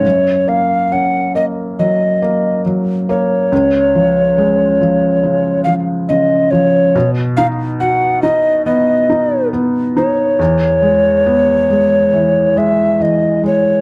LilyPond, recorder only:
\new Staff \with { instrumentName = "Recorder" } { \time 4/4 \key fis \major \tempo 4 = 69 cis''8 eis''8 fis''8 dis''8 dis''4 r8 cis''8~ | cis''2~ cis''8 eis''8 dis''8 cis''8 | r8 eis''8 fis''8 dis''8 dis''4 r8 cis''8~ | cis''2~ cis''8 e''8 dis''8 cis''8 | }